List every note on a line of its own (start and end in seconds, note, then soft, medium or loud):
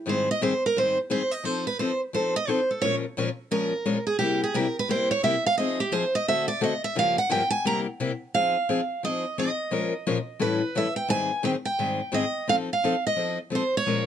0.06 0.27 G#2 medium
0.06 0.28 D#3 medium
0.06 0.27 G3 medium
0.06 0.28 C4 medium
0.06 0.28 D#4 medium
0.06 0.28 G#4 medium
0.06 0.29 C5 medium
0.31 0.42 D#5 medium
0.41 0.52 G#2 medium
0.41 0.53 D#3 medium
0.41 0.53 G3 medium
0.41 0.53 C4 medium
0.41 0.53 D#4 medium
0.41 0.53 G#4 medium
0.41 0.63 C5 medium
0.66 0.77 A#4 medium
0.76 0.97 G#2 medium
0.76 0.97 D#3 medium
0.76 0.97 G3 medium
0.76 0.97 C4 medium
0.76 0.97 D#4 medium
0.76 0.97 G#4 medium
0.76 0.98 C5 medium
1.10 1.21 G#2 medium
1.10 1.21 D#3 medium
1.10 1.21 G3 medium
1.10 1.21 C4 medium
1.10 1.21 D#4 medium
1.10 1.22 G#4 medium
1.10 1.31 C5 medium
1.31 1.45 D#5 medium
1.44 1.65 F3 medium
1.44 1.65 C4 medium
1.44 1.66 D#4 medium
1.44 1.66 A4 medium
1.44 1.66 C5 medium
1.67 1.79 B4 medium
1.79 1.91 F3 medium
1.79 1.91 C4 medium
1.79 1.91 D#4 medium
1.79 1.91 A4 medium
1.79 2.00 C5 medium
2.13 2.34 F3 medium
2.13 2.35 C4 medium
2.13 2.35 D#4 medium
2.13 2.35 A4 medium
2.13 2.35 C5 medium
2.36 2.49 D#5 loud
2.47 2.59 F3 medium
2.47 2.59 C4 medium
2.47 2.60 D#4 medium
2.47 2.60 A4 medium
2.47 2.69 C5 medium
2.71 2.83 A4 soft
2.82 3.04 A#2 medium
2.82 3.04 F3 medium
2.82 3.04 G#3 medium
2.82 3.04 C#4 medium
2.82 3.04 F4 medium
2.82 3.04 A#4 medium
2.82 2.95 C#5 medium
3.17 3.28 A#2 medium
3.17 3.28 F3 medium
3.17 3.28 G#3 medium
3.17 3.29 C#4 medium
3.17 3.29 F4 medium
3.17 3.29 A#4 medium
3.51 3.72 A#2 soft
3.51 3.73 F3 medium
3.51 3.72 G#3 medium
3.51 3.73 C#4 medium
3.51 3.73 F4 medium
3.51 4.03 A#4 medium
3.51 3.73 A#4 medium
3.86 3.97 A#2 medium
3.86 3.97 F3 medium
3.86 3.97 G#3 medium
3.86 3.97 C#4 medium
3.86 3.97 F4 medium
3.86 3.97 A#4 medium
4.07 4.18 G#4 medium
4.19 4.41 C3 medium
4.19 4.41 G3 medium
4.19 4.41 A#3 medium
4.19 4.41 E4 medium
4.19 4.40 G4 medium
4.19 4.42 G4 medium
4.44 4.55 G#4 medium
4.54 4.66 C3 medium
4.54 4.66 G3 medium
4.54 4.66 A#3 medium
4.54 4.66 E4 medium
4.54 4.66 G4 medium
4.54 4.76 A#4 medium
4.79 4.90 B4 medium
4.89 5.10 C3 medium
4.89 5.10 G3 medium
4.89 5.10 A#3 medium
4.89 5.10 E4 medium
4.89 5.11 G4 medium
4.89 5.10 C5 medium
5.11 5.23 C#5 medium
5.23 5.35 C3 medium
5.23 5.35 G3 medium
5.23 5.35 A#3 medium
5.23 5.35 E4 medium
5.23 5.35 G4 medium
5.23 5.44 E5 medium
5.46 5.57 F5 loud
5.58 5.80 F3 medium
5.58 5.80 C4 medium
5.58 5.80 D#4 medium
5.58 5.80 G#4 medium
5.58 5.79 D#5 medium
5.80 5.93 G4 medium
5.92 6.03 F3 medium
5.92 6.04 C4 medium
5.92 6.04 D#4 medium
5.92 6.04 G#4 loud
5.92 6.13 C5 medium
6.15 6.27 D#5 medium
6.28 6.49 D3 medium
6.28 6.48 A3 medium
6.28 6.49 C4 medium
6.28 6.49 F#4 medium
6.28 6.49 A4 medium
6.28 6.47 E5 loud
6.48 6.61 D5 medium
6.61 6.72 D3 medium
6.61 6.72 A3 medium
6.61 6.73 C4 medium
6.61 6.73 F#4 medium
6.61 6.73 A4 medium
6.61 6.83 D#5 medium
6.84 6.96 E5 medium
6.95 7.17 G2 medium
6.95 7.17 C#3 medium
6.95 7.17 F3 medium
6.95 7.17 A#3 medium
6.95 7.17 F4 medium
6.95 7.17 G4 medium
6.95 7.18 F5 loud
7.18 7.31 F#5 medium
7.29 7.41 G2 medium
7.29 7.41 C#3 medium
7.29 7.41 F3 loud
7.29 7.41 A#3 loud
7.29 7.42 F4 medium
7.29 7.41 G4 loud
7.29 7.50 G5 medium
7.50 7.64 G#5 medium
7.65 7.86 C3 medium
7.65 7.86 G3 medium
7.65 7.86 A#3 medium
7.65 7.86 E4 medium
7.65 7.86 G4 medium
7.65 7.79 A#5 medium
8.00 8.11 C3 medium
8.00 8.11 G3 medium
8.00 8.11 A#3 medium
8.00 8.11 E4 medium
8.00 8.11 G4 medium
8.35 8.55 F3 medium
8.35 8.56 C4 medium
8.35 8.56 D#4 medium
8.35 8.56 G#4 medium
8.35 9.04 F5 medium
8.69 8.80 F3 medium
8.69 8.80 C4 medium
8.69 8.80 D#4 medium
8.69 8.80 G#4 medium
9.03 9.24 F3 medium
9.03 9.24 C4 medium
9.03 9.24 D#4 medium
9.03 9.24 G#4 medium
9.03 9.38 D#5 medium
9.38 9.49 F3 medium
9.38 9.49 C4 medium
9.38 9.49 D#4 medium
9.38 9.49 G#4 medium
9.38 10.45 D#5 medium
9.71 9.92 A#2 medium
9.71 9.92 F3 medium
9.71 9.92 G#3 medium
9.71 9.93 C#4 medium
9.71 9.93 F4 medium
9.71 9.93 A#4 medium
10.07 10.17 A#2 medium
10.07 10.17 F3 medium
10.07 10.18 G#3 medium
10.07 10.18 C#4 medium
10.07 10.18 F4 medium
10.07 10.18 A#4 medium
10.39 10.61 A2 medium
10.39 10.61 E3 medium
10.39 10.61 G3 medium
10.39 10.61 C#4 medium
10.39 10.61 E4 medium
10.39 10.61 A4 medium
10.39 10.77 B4 medium
10.75 10.86 A2 medium
10.75 10.86 E3 medium
10.75 10.87 G3 medium
10.75 10.86 C#4 medium
10.75 10.87 E4 medium
10.75 10.87 A4 medium
10.75 10.96 E5 medium
10.96 11.09 G5 medium
11.08 11.30 G#2 medium
11.08 11.30 D#3 medium
11.08 11.30 G3 medium
11.08 11.30 C4 medium
11.08 11.30 D#4 medium
11.08 11.31 G#4 medium
11.08 11.45 G#5 loud
11.43 11.55 G#2 medium
11.43 11.55 D#3 medium
11.43 11.55 G3 medium
11.43 11.55 C4 medium
11.43 11.55 D#4 medium
11.43 11.55 G#4 medium
11.43 11.51 G5 medium
11.65 12.14 G5 medium
11.79 12.00 G#2 medium
11.79 12.00 D#3 medium
11.79 12.00 G3 medium
11.79 12.00 C4 medium
11.79 12.00 D#4 medium
11.79 12.00 G#4 medium
12.12 12.24 G#2 medium
12.12 12.24 D#3 medium
12.12 12.24 G3 medium
12.12 12.24 C4 medium
12.12 12.24 D#4 medium
12.12 12.24 G#4 medium
12.12 12.49 D#5 medium
12.48 12.69 F3 medium
12.48 12.69 C4 medium
12.48 12.69 D#4 medium
12.48 12.69 A4 medium
12.48 12.55 F5 loud
12.73 13.06 F5 medium
12.84 12.94 F3 medium
12.84 12.94 C4 medium
12.84 12.95 D#4 medium
12.84 12.95 A4 medium
13.07 13.37 D#5 medium
13.16 13.37 F3 medium
13.16 13.38 C4 medium
13.16 13.38 D#4 medium
13.16 13.38 A4 medium
13.50 13.62 F3 medium
13.50 13.63 C4 medium
13.50 13.63 D#4 medium
13.50 13.63 A4 medium
13.55 13.75 C5 medium
13.77 14.06 C#5 medium
13.86 14.06 A#2 medium
13.86 14.06 F3 medium
13.86 14.06 G#3 medium
13.86 14.06 C#4 medium
13.86 14.06 F4 medium
13.86 14.06 A#4 medium